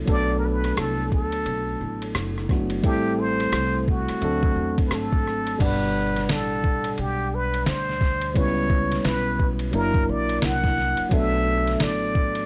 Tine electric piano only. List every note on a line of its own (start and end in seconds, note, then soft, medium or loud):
0.06 2.44 F#3 medium
0.06 2.44 A3 medium
0.06 2.45 B3 medium
0.06 2.45 D4 medium
0.06 2.46 A4 medium
2.49 2.83 F#3 medium
2.49 2.82 A3 soft
2.49 2.84 B3 soft
2.49 2.84 D4 soft
2.49 2.85 F#4 medium
2.83 4.18 G3 medium
2.83 4.19 A3 medium
2.83 4.19 C4 medium
2.83 4.20 E4 medium
2.83 4.20 A4 medium
4.21 5.56 F#3 medium
4.21 5.57 A3 medium
4.21 5.57 C4 medium
4.21 5.58 D4 medium
4.25 5.58 A4 medium
5.58 8.31 B2 medium
5.58 8.31 G3 medium
5.58 8.31 D4 medium
5.58 8.32 D5 medium
5.58 8.32 F#5 medium
8.34 9.70 G3 medium
8.34 9.70 B3 medium
8.34 9.71 C#4 medium
8.34 9.71 E4 medium
8.34 9.72 B4 medium
9.72 11.07 F#3 medium
9.72 11.08 A#3 medium
9.72 11.09 D4 medium
9.72 11.09 E4 medium
9.76 11.10 A#4 medium
11.09 12.46 F#3 medium
11.09 12.46 A3 medium
11.09 12.46 B3 medium
11.09 12.46 D4 medium
11.13 12.46 A4 medium